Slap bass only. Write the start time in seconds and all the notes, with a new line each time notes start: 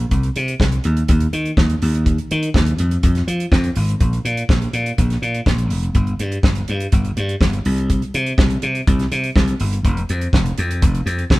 0.11 C2
0.36 C3
0.60 C2
0.85 D#2
1.09 D#2
1.33 D#3
1.57 D#2
1.82 D#2
2.31 D#3
2.55 D#2
2.80 F2
3.04 F2
3.27 F3
3.52 F2
3.76 G#1
4.01 A#1
4.25 A#2
4.49 A#1
4.73 A#2
4.98 A#1
5.22 A#2
5.46 A#1
5.71 F1
5.95 G1
6.20 G2
6.44 G1
6.69 G2
6.93 G1
7.17 G2
7.40 G1
7.66 C2
8.14 C3
8.38 C2
8.63 C3
8.88 C2
9.12 C3
9.35 C2
9.60 G1
9.85 F1
10.10 F2
10.33 F1
10.58 F2
10.82 F1
11.06 F2
11.30 F1